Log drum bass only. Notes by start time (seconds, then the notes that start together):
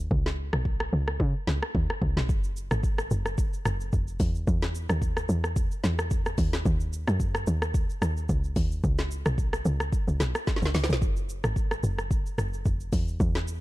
0.11 C#2
0.53 B1
0.93 C#2
1.20 C#3
1.47 C#2
1.75 D#2
2.02 C#2
2.17 B1
2.29 F#1
2.71 G#1
3.11 F#1
3.65 F#1
3.93 F1
4.20 E2
4.47 E2
4.89 D#2
5.29 E2
5.84 E2
6.38 D#2
6.66 D#2
7.08 F#2
7.47 D#2
8.02 D#2
8.29 C#2
8.56 D#2
8.84 C#2
9.26 B1
9.65 C#2
10.08 C#2
10.20 B1
10.62 C#2
10.75 C#2
10.89 B1
11.02 F#1
11.44 G#1
11.83 F#1
12.38 F#1
12.66 F1
12.93 E2
13.20 E2